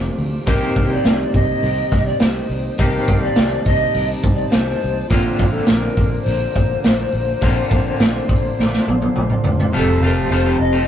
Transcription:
Already playing: F2 C3 D#3 F3 A#3 C4 D#4 F4 G4 D5
0.18 D2, open hi-hat
0.46 C2 C3 D#3 G3 A#3 C4 D#4 G4 A#4, kick, open hi-hat
0.76 C2, kick, open hi-hat
0.93 D5
1.05 C2, snare, open hi-hat
1.34 C2 D#5, kick, open hi-hat
1.63 C2, open hi-hat
1.91 C2, kick, snare, open hi-hat
2.05 D5
2.20 C2 C5, snare, open hi-hat
2.49 C2, open hi-hat
2.77 C2 C3 D#3 A#3 C4 G4 A#4 A5, kick, open hi-hat
3.07 C2, kick, open hi-hat
3.22 D5
3.36 C2, snare, open hi-hat
3.65 C2 D#5, kick, open hi-hat
3.94 C2, open hi-hat
4.23 C2, kick, open hi-hat
4.34 D5
4.48 C5, snare, open hi-hat
4.55 C2
4.80 C2, open hi-hat
5.08 A#1 A#2 D3 F3 A#3 C4 D4 F4 A#4, kick, open hi-hat
5.12 F4
5.38 A#1, kick, open hi-hat
5.51 A4
5.66 A#1 A#4, snare, open hi-hat
5.97 A#1, kick, open hi-hat
6.22 C5
6.26 A#1, open hi-hat
6.56 A#1, kick, open hi-hat
6.84 A#1, snare, open hi-hat
7.12 A#1, open hi-hat
7.41 A#1 A#2 D3 A#3 C4 F4, kick, open hi-hat
7.46 C5
7.70 A#1, kick, open hi-hat
8.00 A#1, snare, open hi-hat
8.29 A#1, kick, open hi-hat
8.59 A#1, snare
8.73 snare
8.88 A#1, high tom
9.02 high tom
9.16 A#1, mid tom
9.30 mid tom
9.44 D2, floor tom
9.60 floor tom
9.73 F1 F2 C3 F3 A3 C4 F4 A4 C5 A5
9.77 A4
10.01 F1 F3 A3 C4 F4
10.06 A#4
10.31 F1 F2 C3 F3 A3 C4 F4 C5
10.45 F3 A3 C4 F4
10.60 F1 D#5, muted clean electric guitar stroke
10.73 F3 A3 C4 F4

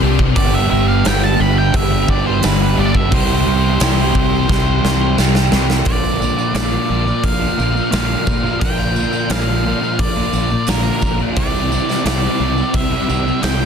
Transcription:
Already playing: C3 G4 D5 C6
0.01 C2 C3 G3 C4 D4
0.19 kick
0.35 G1 G2 D3 G3 B3 D4 G4 D5 E5 B5, kick, open hi-hat
0.54 E5
0.69 G1 D3 G3 B3 D4 G4 E5
0.88 F5
1.03 G1 G2 D3 G3 B3 D4 G5, snare, open hi-hat, tambourine
1.08 G4
1.24 A5
1.37 G1 D3 G3 B5
1.58 G5
1.73 G1 G2 D3 G3 B3 D4 G4 E5, kick, open hi-hat
2.07 G1 D3 G3 D5, kick
2.27 C5
2.41 G1 G2 D3 G3 B3 D4 G4 B4, snare, open hi-hat, tambourine
2.62 B4
2.76 G1 G2 D3 G3 B3 D4 D5
2.95 E5, kick
3.11 C2 C3 E3 G3 C4 E4 G4 C5 C6, kick, open hi-hat
3.44 C2 G3 C4 E4 G4
3.49 G3
3.80 C2 C3 E3 G3 C4 E4 G4, snare, open hi-hat, tambourine
4.14 C2 G3 C4, kick
4.48 C2 C3 E3 G3 C4 E4 G4, kick, snare
4.81 C2 G3 C4, snare
5.16 C2 C3 E3 G3 C4 E4 G4, snare, tambourine
5.35 snare
5.51 C2 C3 G3 C4 E4, snare
5.70 snare
5.85 A#1 A#2 D3 F3 A#3 D4 F4 D5 A#5, kick, open hi-hat, tambourine
6.05 tambourine
6.20 A#2 F3 A#3, tambourine
6.37 A#3 D4 F4, tambourine
6.53 A#1 A#2 D3 F3 A#3 D4 F4 D5, snare, open hi-hat, tambourine
6.72 F3 A#3
6.88 A#1 A#2 D3 F3 A#3 D4 F4
6.92 A#3
7.05 A#3, muted overdriven electric guitar stroke, tambourine
7.09 F3
7.23 A#1 F5, kick, open hi-hat, tambourine
7.40 A#3 D4 F4
7.44 F3
7.56 A#1 A#2 D3 A#3 D4 F4, tambourine
7.60 F3 A#3
7.74 A#3, muted overdriven electric guitar stroke, tambourine
7.79 F3
7.91 A#1 A#2 D3 F3 A#3 D4 F4 F5, snare, open hi-hat, tambourine
7.96 A#3
8.08 A#3 D4 F4
8.27 A#2 F3 A#3, kick, tambourine
8.43 A#3 D4 F4, tambourine
8.48 F3
8.60 A#1 A#2 D3 F3 A#3 D4 F4 G5, kick, open hi-hat, tambourine
8.65 A#3
8.80 tambourine
8.96 A#2 F3 A#3, tambourine
9.12 A#3 D4 F4, tambourine
9.29 A#1 A#2 D3 F3 A#3 D4 F4 F5, snare, open hi-hat, tambourine
9.33 A#3
9.47 F3 A#3
9.63 A#2 D3 F3 A#3 D4 F4
9.81 F3 A#3, muted overdriven electric guitar stroke, tambourine
9.99 A#1 D5, kick, open hi-hat, tambourine
10.16 F3 A#3 D4 F4
10.33 A#1 A#2 D3 F3 A#3 D4 F4, tambourine
10.37 A#3
10.50 A#3, muted overdriven electric guitar stroke, tambourine
10.54 F3
10.67 A#1 A#2 D3 F3 A#3 D4 F4 A#4, snare, open hi-hat, tambourine
10.85 A#3 D4 F4
11.01 A#1 A#2 F3, kick, tambourine
11.06 A#3
11.19 F3 A#3 D4 F4, tambourine
11.35 C2 C3 E3 G3 C4 E4 D5 C6, kick, open hi-hat, tambourine
11.54 tambourine
11.70 C3 G3 C4 E4, tambourine
11.89 G3 C4 E4, snare, tambourine
12.05 C2 C3 E3 G3 C4 E4 D5, snare, open hi-hat, tambourine
12.22 G3 C4
12.39 C2 C3 E3 G3 C4 E4
12.56 G3 C4, muted overdriven electric guitar stroke, tambourine
12.74 C2 C3 G3 C4 E4 E5, kick, open hi-hat, tambourine
12.91 G3 C4 E4
13.07 C2 C3 E3 G3 C4 E4, tambourine
13.25 G3 C4, muted overdriven electric guitar stroke, tambourine
13.42 C2 C3 E3 G3 C4 E4 G5, snare, open hi-hat, tambourine
13.59 G3 C4 E4

